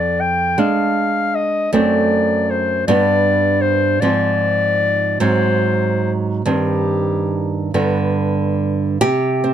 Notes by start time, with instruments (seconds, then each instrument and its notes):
Already playing: nylon-string guitar F2, clarinet D5
0.21 clarinet G5
0.58 nylon-string guitar G#3 D4, clarinet F5
1.35 clarinet D#5
1.73 nylon-string guitar F#2 A3 C4, clarinet D5
2.50 clarinet C5
2.88 nylon-string guitar G2 G3 B3, clarinet D5
3.62 clarinet C5
4.01 nylon-string guitar G#2 F3 C4, clarinet D5
5.20 nylon-string guitar G#2 F#3 C4, clarinet C5
6.45 nylon-string guitar G2 D#3 C4, clarinet G4
7.74 nylon-string guitar G2 D3 B3
9.01 nylon-string guitar C3 G4
9.44 nylon-string guitar C4